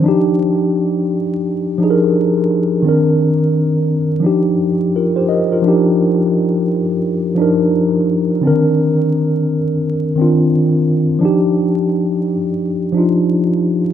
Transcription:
0.02 1.18 F3 medium
0.02 1.19 D4 medium
0.06 1.20 D#4 medium
0.06 1.21 G4 medium
1.78 2.67 F3 medium
1.78 2.68 D4 medium
1.78 2.69 D#4 medium
1.84 1.90 G#4 medium
1.90 2.73 A#4 medium
2.82 3.97 D#3 medium
2.82 3.98 C4 medium
2.82 3.99 D4 medium
2.89 4.00 A#4 medium
4.20 4.52 F3 medium
4.20 4.53 D4 medium
4.25 4.54 D#4 medium
4.25 4.55 G4 medium
4.96 5.16 F4 medium
4.96 5.16 A#4 medium
5.16 5.28 G4 medium
5.16 5.28 C5 medium
5.29 5.50 A#4 medium
5.29 5.49 D#5 medium
5.52 5.85 F4 medium
5.52 5.84 A#4 medium
5.62 6.77 F3 medium
5.62 6.78 D4 medium
5.66 6.79 D#4 medium
5.66 6.80 G4 medium
7.35 8.24 F3 medium
7.35 8.26 D4 medium
7.40 8.27 D#4 medium
7.40 8.28 A#4 medium
8.41 8.50 D3 medium
8.41 9.57 C4 medium
8.41 9.58 D4 medium
8.47 9.59 D#3 medium
8.47 9.59 A#4 loud
10.15 11.04 D#3 medium
10.15 11.05 C4 medium
10.15 11.06 D4 medium
10.21 11.07 F4 medium
11.19 12.34 F3 medium
11.19 12.35 D4 medium
11.19 12.36 D#4 medium
11.25 12.37 G4 medium
12.93 13.82 F3 medium
12.93 13.83 D4 medium
12.97 13.84 D#4 medium
12.97 13.85 F4 medium

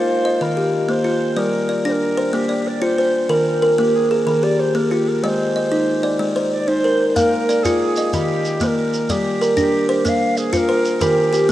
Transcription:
0.00 0.24 F4 medium
0.00 0.44 C5 medium
0.00 0.24 F5 medium
0.25 0.57 D#5 medium
0.41 0.73 D#3 medium
0.41 0.91 A#4 medium
0.57 1.05 G4 medium
0.89 1.21 A#3 medium
0.89 1.39 C5 medium
1.04 1.53 F4 medium
1.36 1.69 G3 medium
1.36 1.86 A#4 medium
1.36 1.68 D5 medium
1.69 2.17 D5 medium
1.85 2.17 D4 medium
1.85 1.93 C5 medium
1.92 2.36 A#4 medium
2.17 2.50 C5 medium
2.33 2.65 A#3 medium
2.33 2.69 G4 medium
2.49 2.98 D5 medium
2.67 2.83 D5 medium
2.82 3.14 F4 medium
2.82 3.30 C5 medium
2.98 3.46 C5 medium
3.29 3.62 D#3 medium
3.29 3.61 A#4 medium
3.29 3.81 A#4 medium
3.62 4.11 A#4 medium
3.78 4.10 A#3 medium
3.78 3.97 G4 medium
3.95 4.12 G#4 medium
4.10 4.59 G#4 medium
4.10 4.27 A#4 medium
4.27 4.59 D#3 medium
4.27 4.45 A#4 medium
4.43 4.91 G4 medium
4.43 4.61 D5 medium
4.59 4.77 C5 medium
4.75 5.07 A#3 medium
4.75 4.93 A#4 medium
4.91 5.39 F4 medium
4.91 5.10 G4 medium
5.08 5.24 A#4 medium
5.23 5.56 G#3 medium
5.23 5.29 D5 medium
5.23 5.55 D#5 medium
5.28 6.27 C5 medium
5.56 6.04 D#5 medium
5.72 6.04 D#4 medium
6.03 6.52 D5 medium
6.19 6.52 G#3 medium
6.36 6.84 C5 medium
6.50 6.69 D5 medium
6.68 7.00 D#4 medium
6.68 7.08 C5 loud
6.84 7.32 A#4 medium
7.08 7.17 C5 medium
7.15 7.48 A#3 medium
7.15 7.65 A#4 loud
7.15 7.64 F5 medium
7.15 shekere medium
7.49 7.97 D5 medium
7.49 shekere medium
7.63 7.97 F4 medium
7.63 8.15 G#4 loud
7.63 shekere medium
7.96 8.29 D#5 medium
7.96 shekere medium
8.13 8.45 D#3 medium
8.13 8.64 G4 loud
8.13 shekere medium
8.45 shekere soft
8.60 8.93 A#3 medium
8.60 8.67 C5 medium
8.60 shekere medium
8.66 9.13 A#4 loud
8.93 shekere medium
9.09 9.41 G3 medium
9.09 9.58 G4 loud
9.09 9.57 D5 medium
9.09 shekere medium
9.41 9.89 A#4 medium
9.41 shekere medium
9.57 9.89 D4 medium
9.57 10.08 G4 loud
9.57 shekere medium
9.89 10.21 C5 medium
10.05 10.37 A#3 medium
10.05 10.39 F5 medium
10.05 shekere medium
10.37 10.54 G#4 medium
10.37 shekere medium
10.53 10.85 F4 medium
10.53 10.58 C5 loud
10.53 shekere medium
10.57 11.03 A#4 loud
10.69 11.17 C5 medium
10.85 shekere medium
11.01 11.33 D#3 medium
11.01 11.51 G4 medium
11.01 11.49 A#4 medium
11.01 shekere medium
11.33 11.52 G4 medium
11.33 shekere medium

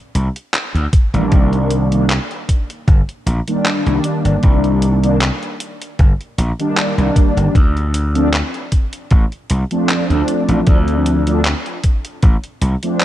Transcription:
0.15 0.28 C2 medium
0.15 closed hi-hat medium
0.36 closed hi-hat soft
0.54 clap loud
0.54 closed hi-hat medium
0.75 0.86 D2 medium
0.75 closed hi-hat soft
0.93 kick loud
0.93 closed hi-hat medium
1.14 1.25 A1 loud
1.14 1.87 D#3 medium
1.14 1.87 G3 medium
1.14 1.87 A#3 medium
1.14 1.88 D4 loud
1.14 closed hi-hat soft
1.32 2.17 C2 medium
1.32 kick loud
1.32 closed hi-hat medium
1.53 closed hi-hat soft
1.70 closed hi-hat medium
1.91 2.05 D#3 medium
1.91 2.05 G3 medium
1.91 2.05 A#3 medium
1.91 2.06 D4 loud
1.91 closed hi-hat soft
2.10 clap loud
2.10 closed hi-hat soft
2.31 closed hi-hat soft
2.49 kick medium
2.49 closed hi-hat medium
2.70 closed hi-hat medium
2.87 3.00 G1 medium
2.87 kick loud
2.87 closed hi-hat soft
3.09 closed hi-hat soft
3.26 3.39 A#1 loud
3.26 closed hi-hat medium
3.47 3.81 D#3 medium
3.47 3.82 G3 medium
3.47 3.82 A#3 medium
3.47 3.82 D4 medium
3.47 closed hi-hat soft
3.66 clap loud
3.66 closed hi-hat soft
3.85 3.97 C2 medium
3.85 4.98 D#3 medium
3.85 4.98 G3 medium
3.85 4.99 A#3 medium
3.85 4.99 D4 medium
3.85 closed hi-hat soft
4.04 closed hi-hat medium
4.25 4.36 G1 loud
4.25 closed hi-hat soft
4.43 5.29 C2 medium
4.43 kick loud
4.43 closed hi-hat soft
4.64 closed hi-hat soft
4.82 closed hi-hat medium
5.03 5.16 D#3 medium
5.03 5.17 G3 medium
5.03 5.17 A#3 medium
5.03 5.17 D4 loud
5.03 closed hi-hat soft
5.21 clap loud
5.21 closed hi-hat soft
5.43 closed hi-hat soft
5.60 closed hi-hat medium
5.82 closed hi-hat soft
5.99 6.12 G1 medium
5.99 kick loud
5.99 closed hi-hat medium
6.21 closed hi-hat soft
6.38 6.51 A#1 loud
6.38 closed hi-hat medium
6.59 6.93 D#3 medium
6.59 6.93 G3 medium
6.59 6.94 A#3 medium
6.59 6.94 D4 medium
6.59 closed hi-hat soft
6.77 clap loud
6.77 closed hi-hat soft
6.98 7.09 C2 loud
6.98 7.53 D#3 medium
6.98 7.53 G3 medium
6.98 7.53 A#3 medium
6.98 7.54 D4 medium
6.98 closed hi-hat soft
7.16 kick loud
7.16 closed hi-hat medium
7.37 7.48 G1 loud
7.37 closed hi-hat soft
7.55 8.41 D2 medium
7.55 kick loud
7.55 closed hi-hat medium
7.77 closed hi-hat soft
7.94 closed hi-hat medium
8.14 8.28 F3 loud
8.14 8.28 A3 medium
8.14 8.28 C4 medium
8.14 8.29 D4 loud
8.14 closed hi-hat soft
8.34 clap loud
8.34 closed hi-hat soft
8.54 closed hi-hat soft
8.72 kick medium
8.72 closed hi-hat medium
8.93 closed hi-hat medium
9.11 9.24 A1 medium
9.11 kick loud
9.11 closed hi-hat soft
9.32 closed hi-hat soft
9.50 9.63 C2 medium
9.50 closed hi-hat medium
9.71 10.05 F3 medium
9.71 10.05 A3 medium
9.71 10.05 C4 medium
9.71 10.06 D4 medium
9.71 closed hi-hat medium
9.89 clap loud
9.89 closed hi-hat soft
10.08 10.21 D2 loud
10.08 11.21 F3 medium
10.08 11.21 A3 medium
10.08 11.22 C4 medium
10.08 11.22 D4 medium
10.08 closed hi-hat soft
10.28 closed hi-hat medium
10.49 10.60 A1 loud
10.49 closed hi-hat soft
10.67 11.53 D2 loud
10.67 kick loud
10.67 closed hi-hat medium
10.88 closed hi-hat soft
11.06 closed hi-hat loud
11.26 11.40 F3 medium
11.26 11.40 A3 medium
11.26 11.40 C4 medium
11.26 11.40 D4 loud
11.26 closed hi-hat medium
11.45 clap loud
11.45 closed hi-hat medium
11.66 closed hi-hat soft
11.84 kick medium
11.84 closed hi-hat loud
12.05 closed hi-hat medium
12.22 12.36 A1 medium
12.22 kick loud
12.22 closed hi-hat medium
12.44 closed hi-hat soft
12.61 12.74 C2 loud
12.61 closed hi-hat medium
12.83 13.05 F3 medium
12.83 13.05 A3 medium
12.83 13.05 C4 medium
12.83 13.05 D4 medium
12.83 closed hi-hat medium
13.00 clap loud
13.00 closed hi-hat medium

